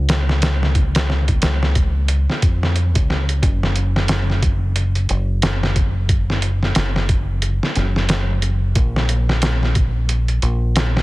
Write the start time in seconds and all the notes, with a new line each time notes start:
Already playing: C#2
0.09 snare, closed hi-hat
0.29 snare
0.42 snare, closed hi-hat
0.63 snare
0.75 kick, closed hi-hat
0.95 snare, closed hi-hat
1.10 snare
1.28 kick, closed hi-hat
1.42 C#2, snare, closed hi-hat
1.63 snare
1.75 kick, closed hi-hat
2.08 closed hi-hat
2.30 snare
2.42 F2, kick, closed hi-hat
2.63 snare
2.76 closed hi-hat
2.95 C#2, kick, closed hi-hat
3.10 snare
3.29 closed hi-hat
3.43 F#1, kick, closed hi-hat
3.63 snare
3.76 closed hi-hat
3.96 snare
4.08 snare, closed hi-hat
4.30 snare
4.42 kick, closed hi-hat
4.76 closed hi-hat
4.95 closed hi-hat
5.09 F#1, closed hi-hat
5.42 snare, closed hi-hat
5.63 snare
5.76 kick, closed hi-hat
6.09 kick, closed hi-hat
6.30 snare
6.42 closed hi-hat
6.63 snare
6.75 F#1, snare, closed hi-hat
6.96 snare
7.09 kick, closed hi-hat
7.42 closed hi-hat
7.63 snare
7.75 F#1, snare, closed hi-hat
7.96 snare
8.09 snare, closed hi-hat
8.42 closed hi-hat
8.75 A#1, kick, closed hi-hat
8.96 snare
9.09 closed hi-hat
9.29 snare
9.42 snare, closed hi-hat
9.63 snare
9.75 kick, closed hi-hat
10.09 closed hi-hat
10.28 closed hi-hat
10.42 A#1, closed hi-hat
10.76 snare, closed hi-hat
10.97 snare